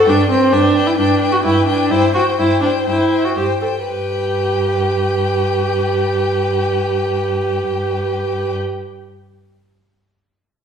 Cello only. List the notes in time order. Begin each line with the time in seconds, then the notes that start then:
0.07 G2
0.53 G2
0.99 G2
1.45 G2
1.91 G2
2.39 G2
2.87 G2
3.37 G2
3.87 G2